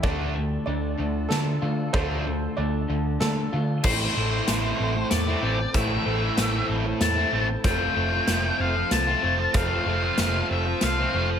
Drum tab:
CC |------|------|x-----|------|
HH |------|------|--x-x-|x-x-x-|
SD |----o-|----o-|--o-o-|--o-o-|
BD |o-----|o-----|o-----|o-----|

CC |------|------|
HH |x-x-x-|x-x-x-|
SD |--o-o-|--o-o-|
BD |o-----|o-----|